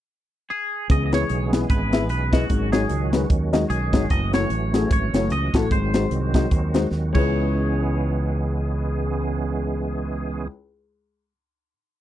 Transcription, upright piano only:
0.89 1.49 C#3 medium
1.12 1.21 B3 medium
1.12 1.21 E4 medium
1.12 1.21 G#4 medium
1.12 1.21 C#5 medium
1.53 1.61 B3 medium
1.53 1.61 E4 medium
1.53 1.61 G#4 medium
1.53 1.62 B4 medium
1.92 2.01 B3 medium
1.92 2.01 E4 medium
1.92 2.01 G#4 medium
1.92 2.01 E5 medium
2.33 2.41 B3 medium
2.33 2.41 E4 medium
2.33 2.41 G#4 medium
2.33 2.42 D#5 medium
2.49 3.09 G#2 medium
2.72 2.81 G#3 medium
2.72 2.81 D#4 medium
2.72 2.81 F#4 medium
2.72 2.82 C#5 medium
3.13 3.21 G#3 medium
3.13 3.22 D#4 medium
3.13 3.22 F#4 medium
3.13 3.22 B4 medium
3.53 3.62 G#3 medium
3.53 3.62 D#4 medium
3.53 3.62 F#4 medium
3.53 3.62 D#5 medium
3.93 4.02 G#3 medium
3.93 4.02 D#4 medium
3.93 4.02 F#4 medium
3.93 4.02 C#5 medium
4.33 4.42 A3 medium
4.33 4.42 E4 medium
4.33 4.42 F#4 medium
4.33 4.42 C#5 medium
4.73 4.82 A3 medium
4.73 4.82 E4 medium
4.73 4.83 F#4 medium
4.73 4.83 G#4 medium
5.14 5.23 A3 medium
5.14 5.23 E4 medium
5.14 5.23 F#4 medium
5.14 5.23 C#5 medium
5.54 5.63 A3 medium
5.54 5.63 E4 medium
5.54 5.63 F#4 medium
5.54 5.63 A4 medium
5.71 6.31 G#2 medium
5.94 6.03 G#3 medium
5.94 6.03 D#4 medium
5.94 6.03 F#4 medium
5.94 6.03 C5 medium
6.34 6.43 G#3 medium
6.34 6.43 D#4 medium
6.34 6.43 F#4 medium
6.34 6.43 D#5 medium
6.74 6.83 G#3 medium
6.74 6.83 D#4 medium
6.74 6.83 F#4 medium
6.74 6.83 C5 medium
7.13 10.47 C#2 medium
7.13 10.45 G#3 medium
7.13 10.46 C#4 medium
7.13 10.48 E4 medium
7.17 10.49 B4 medium

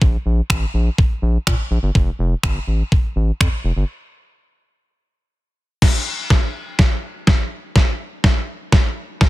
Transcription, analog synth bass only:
0.02 0.17 A#1 loud
0.26 0.41 A#1 loud
0.50 0.65 A1 loud
0.74 0.90 A#1 medium
1.22 1.38 A#1 medium
1.47 1.55 A#2 loud
1.71 1.79 A#1 medium
1.83 1.91 G1 medium
1.95 2.11 F1 loud
2.19 2.35 F1 loud
2.43 2.59 G1 loud
2.67 2.83 A1 medium
3.16 3.31 A1 loud
3.40 3.48 F2 loud
3.64 3.72 F1 medium
3.76 3.84 G1 medium

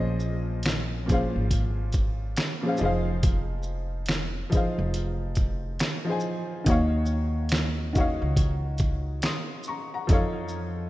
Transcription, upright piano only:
0.00 0.76 A#2 medium
0.00 0.77 F3 medium
0.00 0.78 C#4 medium
0.00 0.78 G#4 medium
0.00 0.79 C5 medium
0.00 0.83 D#5 medium
1.06 2.22 A#2 medium
1.06 2.23 F3 medium
1.06 2.24 C#4 medium
1.11 2.25 G#4 medium
1.11 2.25 C5 medium
1.11 2.26 F5 medium
2.62 2.79 A#2 medium
2.62 2.77 F3 medium
2.62 2.81 C#4 medium
2.66 2.80 G#4 medium
2.66 2.82 C5 medium
2.66 2.83 F5 medium
2.78 4.18 F3 medium
2.78 4.19 D#4 medium
2.78 4.20 G#4 medium
2.83 4.21 C5 medium
2.83 4.22 F5 medium
4.50 5.66 F3 medium
4.50 5.66 D#4 medium
4.50 5.67 G#4 medium
4.55 5.68 C5 medium
4.55 5.69 F5 medium
6.05 6.52 F3 medium
6.05 6.53 D#4 medium
6.05 6.54 G#4 medium
6.10 6.55 C5 medium
6.10 6.56 G#5 medium
6.64 7.62 D#3 medium
6.64 7.63 D#4 medium
6.64 7.64 F#4 medium
6.70 7.65 C#5 medium
6.70 7.66 F5 medium
7.93 9.09 D#3 medium
7.93 9.09 D#4 medium
7.93 9.10 F#4 medium
7.99 9.11 C#5 medium
7.99 9.12 F5 medium
9.25 9.65 C6 medium
9.25 9.65 D#6 medium
9.68 9.92 A#5 medium
9.68 9.92 C#6 medium
9.94 10.34 F#5 medium
9.94 10.34 A#5 medium
10.07 10.90 F3 medium
10.07 10.90 D#4 medium
10.07 10.90 A4 medium
10.13 10.90 C#5 medium
10.13 10.90 F5 medium

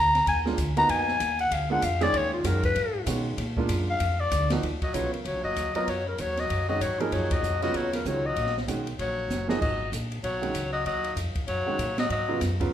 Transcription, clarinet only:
0.00 0.24 A#5 loud
0.29 0.39 G#5 medium
0.78 0.92 A#5 loud
0.90 1.40 G#5 loud
1.41 1.55 F#5 loud
1.53 1.71 F5 medium
1.72 1.86 F#5 loud
1.84 2.05 F5 medium
2.03 2.18 D5 loud
2.17 2.33 C#5 medium
2.33 2.48 F4 medium
2.46 2.64 A#4 medium
2.65 3.05 B4 loud
3.90 4.22 F5 medium
4.20 4.51 D5 medium
4.83 4.96 D#5 medium
4.94 5.13 C#5 medium
5.14 5.28 A#4 soft
5.26 5.44 C#5 medium
5.45 5.73 D#5 medium
5.76 5.91 D#5 medium
5.89 6.07 C#5 medium
6.08 6.22 A#4 medium
6.21 6.41 C#5 medium
6.40 6.69 D#5 medium
6.69 6.83 D#5 medium
6.82 7.03 C#5 medium
7.01 7.15 A#4 medium
7.13 7.34 C#5 medium
7.33 7.62 D#5 medium
7.63 7.78 D#5 medium
7.76 7.94 C#5 medium
7.95 8.09 A#4 medium
8.07 8.28 C#5 medium
8.26 8.56 D#5 loud
9.00 9.46 C#5 medium
9.50 9.61 D#5 medium
9.62 9.91 D#5 medium
10.24 10.70 C#5 medium
10.73 10.85 D#5 medium
10.87 11.15 D#5 medium
11.48 11.95 C#5 medium
11.99 12.10 D#5 medium
12.12 12.40 D#5 medium

